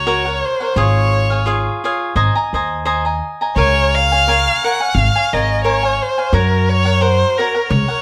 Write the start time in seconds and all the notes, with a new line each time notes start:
Already playing: C#2 C#5
0.07 F#4 A#4 C#5 F#5
0.25 A#4 C#5 F#5
0.45 C5
0.60 A#4 C#5 F#5
0.76 G#1 F4 G#4 C#5 F5
1.30 G#4 C#5 F5
1.46 F4 G#4 C#5 F5
1.84 F4 G#4 C#5 F5
2.16 G#1 C5 D#5 G#5 A#5
2.35 D#5 G#5 A#5
2.53 D#2 C5 D#5 G#5 A#5
2.85 C5 D#5 G#5 A#5
3.05 D#5 G#5 A#5
3.41 D#5 G#5 A#5
3.56 C#2 A#4 C#5 F5 G#5
3.95 F5
4.12 C#5 F5 G#5
4.27 A#4 C#5 F5 G#5
4.64 A#4 C#5 F5 F#5 G#5
4.80 C#5 F5 G#5
4.94 G#1 F5
5.15 C#5 F5 G#5
5.33 G#1 A#4 C#5 D#5 F5 G#5
5.64 A#4 C#5 F5 G#5
5.83 C#5 F5 G#5
6.02 C5
6.18 C#5 F5 G#5
6.33 F#2 F#4 A#4 C#5 F#5
6.70 C#5
6.85 A#4 C#5 F#5
7.01 F#4 A#4 C5 F#5
7.38 F#4 A#4 C#5 F#5
7.54 A#4 C#5 F#5
7.69 C#2 C#5
7.88 A#4 C#5 F#5